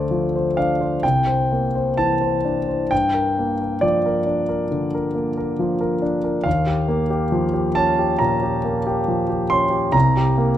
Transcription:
Already playing: D2 A3 C5 D5
0.11 F3
0.36 C5
0.57 D4 F5
0.81 C5
1.03 C2 G5
1.27 C5
1.52 A#3
1.75 C5
1.97 E3 A5
2.22 C5
2.45 D4
2.68 C5
2.91 G2 G5
3.14 A#4
3.39 A#3
3.61 A#4
3.81 F3 D5
4.06 A#4
4.26 D4
4.49 A#4
4.71 D3
4.95 A#4
5.15 A#3
5.37 A#4
5.59 F3
5.81 A#4
6.02 D4
6.24 A#4
6.44 D#2 F5
6.67 G4
6.88 A#3
7.10 G4
7.32 F3
7.54 G4
7.75 C#4 A5
7.99 G4
8.19 A#2 A#5
8.43 G4
8.64 A#3
8.87 G4
9.08 F3
9.29 G4
9.50 C#4 C6
9.70 G4
9.92 C2 A#5
10.17 G4
10.38 A#3

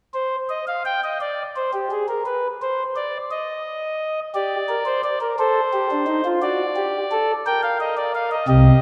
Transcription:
0.14 C5
0.49 D#5
0.67 F5
0.85 G5
1.04 D#5
1.21 D5
1.56 C5
1.74 G4
1.91 G#4
2.08 A#4
2.26 B4
2.62 C5
2.96 D5
3.31 D#5
4.35 G4 D5
4.69 A#4
4.86 C5
5.04 D5
5.21 A#4
5.39 A4 C5
5.73 G4
5.91 D4
6.07 D#4
6.25 F4
6.42 F#4 D5
6.76 G4
7.11 A4
7.46 A#4 G5
7.63 F5
7.80 D#5
7.97 D5
8.15 F5
8.31 D#5
8.48 C2 C3 G4 D#5

